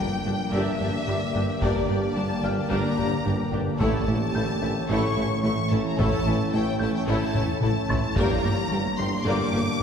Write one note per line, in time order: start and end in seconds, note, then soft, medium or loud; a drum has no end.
0.00 3.76 D3 medium
0.00 0.15 G3 medium
0.00 3.76 A#3 medium
0.00 3.76 D4 medium
0.00 3.76 G4 medium
0.00 3.76 D5 medium
0.00 0.53 G5 medium
0.00 1.04 G6 soft
0.00 impact medium
0.25 0.36 G1 soft
0.25 0.34 G1 soft
0.25 0.33 G2 soft
0.25 0.42 G3 soft
0.25 0.34 D4 soft
0.25 0.34 G4 soft
0.52 0.63 G1 medium
0.52 0.61 G1 medium
0.52 0.60 G2 medium
0.52 0.70 G2 medium
0.52 0.78 D4 medium
0.52 0.79 G4 medium
0.52 0.79 A#4 medium
0.52 0.79 D5 medium
0.52 1.62 E5 loud
0.52 2.12 E6 soft
0.80 0.91 G1 soft
0.80 0.88 G1 soft
0.80 0.88 G2 medium
0.80 0.97 G2 medium
0.80 0.88 D4 medium
0.80 0.89 D4 soft
0.80 0.88 G4 soft
0.80 0.89 G4 soft
1.07 1.15 G1 soft
1.07 1.18 G1 soft
1.07 1.16 G2 soft
1.07 1.24 G2 medium
1.07 1.15 D4 medium
1.07 1.15 G4 soft
1.07 1.16 G4 soft
1.07 1.15 A#4 soft
1.07 2.68 D5 soft
1.07 2.68 D6 soft
1.34 1.42 G1 soft
1.34 1.46 G1 soft
1.34 1.42 G2 soft
1.34 1.51 G2 medium
1.34 1.42 D4 medium
1.34 1.43 D4 medium
1.34 1.42 G4 soft
1.34 1.43 G4 soft
1.61 1.70 G1 medium
1.61 1.74 G1 medium
1.61 1.70 G2 medium
1.61 1.78 G2 medium
1.61 1.88 D4 medium
1.61 1.87 G4 medium
1.61 1.87 A#4 medium
1.61 2.16 D5 medium
1.61 1.88 D5 medium
1.61 taiko medium
1.89 1.97 G1 soft
1.89 2.01 G1 soft
1.89 1.97 G2 medium
1.89 2.06 G2 medium
1.89 1.97 D4 soft
1.89 1.98 D4 soft
1.89 1.97 G4 soft
2.15 2.24 G1 soft
2.15 2.28 G1 soft
2.15 2.24 G2 medium
2.15 2.33 G3 medium
2.15 2.24 D4 soft
2.15 2.24 G4 medium
2.15 2.24 G4 soft
2.15 2.24 A#4 soft
2.15 2.43 A5 medium
2.43 2.52 G1 medium
2.43 2.56 G1 soft
2.43 2.51 G2 soft
2.43 2.60 G3 medium
2.43 2.51 D4 soft
2.43 2.52 D4 medium
2.43 2.51 G4 soft
2.43 2.52 G4 soft
2.43 4.04 F5 soft
2.43 2.57 G5 medium
2.43 4.04 F6 medium
2.57 2.71 A5 medium
2.70 2.79 G1 medium
2.70 2.83 G1 medium
2.70 2.79 G2 medium
2.70 2.87 G2 medium
2.70 2.96 D4 medium
2.70 2.96 G4 medium
2.70 2.96 A#4 medium
2.70 2.96 D5 medium
2.70 3.53 A#5 medium
2.98 3.07 G1 soft
2.98 3.10 G1 soft
2.98 3.07 G2 soft
2.98 3.15 G2 medium
2.98 3.06 D4 soft
2.98 3.06 D4 medium
2.98 3.06 G4 soft
2.98 3.07 G4 medium
3.25 3.34 G1 soft
3.25 3.37 G1 soft
3.25 3.34 G2 soft
3.25 3.42 G2 medium
3.25 3.33 D4 soft
3.25 3.33 G4 soft
3.25 3.33 A#4 soft
3.52 3.61 G1 medium
3.52 3.65 G1 soft
3.52 3.61 G2 soft
3.52 3.70 G2 medium
3.52 3.60 D4 medium
3.52 3.61 D4 medium
3.52 3.61 G4 medium
3.52 3.61 G4 soft
3.79 3.89 A1 medium
3.79 3.92 A1 medium
3.79 3.97 A2 medium
3.79 3.88 A2 medium
3.79 8.17 E3 medium
3.79 8.17 A3 medium
3.79 4.06 A3 medium
3.79 7.99 A3 medium
3.79 7.99 C#4 medium
3.79 4.06 E4 medium
3.79 8.17 E4 medium
3.79 4.05 A4 medium
3.79 4.05 C#5 medium
3.79 8.17 C#5 medium
3.79 4.85 A5 loud
3.79 5.40 E6 soft
3.79 taiko loud
4.07 4.15 A1 medium
4.07 4.18 A1 medium
4.07 4.15 A2 medium
4.07 4.24 A2 medium
4.07 4.16 A3 soft
4.07 4.15 C#4 soft
4.07 4.15 E4 soft
4.07 4.16 E4 soft
4.34 4.42 A1 soft
4.34 4.46 A1 soft
4.34 4.43 A2 medium
4.34 4.52 A3 medium
4.34 4.44 A3 soft
4.34 4.42 E4 medium
4.34 4.44 E4 medium
4.34 4.42 A4 medium
4.34 5.95 G6 soft
4.62 4.70 A1 medium
4.62 4.73 A1 medium
4.62 4.70 A2 soft
4.62 4.79 A3 medium
4.62 4.71 A3 medium
4.62 4.70 C#4 medium
4.62 4.70 E4 medium
4.62 4.71 E4 medium
4.89 5.00 A1 medium
4.89 4.98 A1 medium
4.89 4.97 A2 medium
4.89 5.06 A2 medium
4.89 5.15 A3 medium
4.89 5.15 E4 medium
4.89 5.14 A4 medium
4.89 5.15 C#5 medium
4.89 5.43 C#6 medium
5.16 5.24 A1 soft
5.16 5.28 A1 soft
5.16 5.24 A2 medium
5.16 5.34 A2 medium
5.16 5.25 A3 soft
5.16 5.24 C#4 medium
5.16 5.24 E4 medium
5.16 5.25 E4 medium
5.43 5.52 A1 medium
5.43 5.55 A1 medium
5.43 5.51 A2 medium
5.43 5.61 A2 medium
5.43 5.52 A3 medium
5.43 5.52 E4 medium
5.43 5.52 A4 medium
5.43 5.71 C#6 medium
5.71 5.82 A1 medium
5.71 5.79 A1 medium
5.71 5.79 A2 medium
5.71 5.88 A2 medium
5.71 5.80 A3 medium
5.71 5.79 C#4 medium
5.71 5.80 E4 medium
5.71 5.85 A5 medium
5.87 5.99 A#5 medium
5.98 6.07 A1 medium
5.98 6.10 A1 medium
5.98 6.06 A2 medium
5.98 6.15 A2 medium
5.98 6.24 A3 medium
5.98 6.25 E4 medium
5.98 6.24 A4 medium
5.98 6.24 C#5 medium
5.98 7.59 E5 soft
5.98 6.53 A5 loud
5.98 7.58 E6 soft
5.98 taiko loud
6.25 6.37 A1 medium
6.25 6.34 A1 medium
6.25 6.33 A2 medium
6.25 6.42 A2 medium
6.25 6.34 A3 medium
6.25 6.35 C#4 soft
6.25 6.35 E4 medium
6.53 6.62 A1 soft
6.53 6.65 A1 medium
6.53 6.61 A2 medium
6.53 6.70 A3 medium
6.53 6.62 A3 soft
6.53 6.62 E4 soft
6.53 6.63 E4 medium
6.53 6.62 A4 medium
6.53 6.80 G5 medium
6.79 6.91 A1 medium
6.79 6.89 A1 soft
6.79 6.88 A2 soft
6.79 6.97 A3 medium
6.79 6.89 A3 medium
6.79 6.89 C#4 medium
6.79 6.89 E4 medium
6.79 6.94 A5 medium
6.79 8.39 G6 medium
6.95 7.08 G5 medium
7.07 7.19 A1 medium
7.07 7.16 A1 medium
7.07 7.15 A2 medium
7.07 7.24 A2 medium
7.07 7.33 A3 medium
7.07 7.33 E4 medium
7.07 7.33 A4 medium
7.07 7.33 C#5 medium
7.07 7.61 A5 medium
7.35 7.43 A1 medium
7.35 7.47 A1 medium
7.35 7.43 A2 medium
7.35 7.51 A2 medium
7.35 7.43 A3 medium
7.35 7.43 C#4 medium
7.35 7.43 E4 medium
7.35 taiko low-mid medium
7.61 7.70 A1 medium
7.61 7.73 A1 medium
7.61 7.69 A2 medium
7.61 7.78 A2 medium
7.61 7.70 A3 medium
7.61 7.70 E4 medium
7.61 7.70 A4 medium
7.61 8.17 A5 medium
7.61 taiko mid medium
7.89 7.97 A1 medium
7.89 8.01 A1 medium
7.89 7.97 A2 medium
7.89 8.06 A2 medium
7.89 7.98 A3 medium
7.89 7.98 C#4 medium
7.89 7.97 E4 medium
7.89 7.98 E4 medium
7.89 9.49 C#6 soft
7.89 9.49 A6 medium
7.89 taiko low medium
8.15 8.24 G1 medium
8.15 8.27 G1 medium
8.15 8.33 G2 medium
8.15 8.25 G2 medium
8.15 9.83 D3 medium
8.15 9.83 A#3 medium
8.15 8.42 A#3 medium
8.15 9.83 A#3 medium
8.15 9.83 D4 medium
8.15 9.83 G4 medium
8.15 8.42 G4 medium
8.15 8.43 A#4 medium
8.15 9.83 D5 medium
8.15 8.43 D5 medium
8.15 8.99 A#5 loud
8.15 taiko loud
8.43 8.55 G1 medium
8.43 8.52 G1 medium
8.43 8.51 G2 medium
8.43 8.60 G2 medium
8.43 8.52 A#3 medium
8.43 8.53 D4 medium
8.43 8.52 G4 medium
8.43 8.53 G4 medium
8.71 8.82 G1 medium
8.71 8.79 G1 medium
8.71 8.79 G2 medium
8.71 8.88 G3 medium
8.71 8.80 A#3 soft
8.71 8.80 G4 medium
8.71 8.79 A#4 medium
8.97 9.09 G1 medium
8.97 9.06 G1 medium
8.97 9.05 G2 medium
8.97 9.15 G3 medium
8.97 9.07 A#3 soft
8.97 9.07 D4 medium
8.97 9.07 G4 medium
8.97 9.26 C6 medium
9.25 9.33 G1 medium
9.25 9.36 G1 medium
9.25 9.33 G2 medium
9.25 9.42 G2 medium
9.25 9.51 A#3 medium
9.25 9.51 G4 medium
9.25 9.51 A#4 medium
9.25 9.51 D5 medium
9.25 9.83 D6 loud
9.52 9.60 G1 medium
9.52 9.64 G1 medium
9.52 9.61 G2 medium
9.52 9.69 G2 medium
9.52 9.61 A#3 medium
9.52 9.60 D4 medium
9.52 9.60 G4 medium
9.52 9.61 G4 medium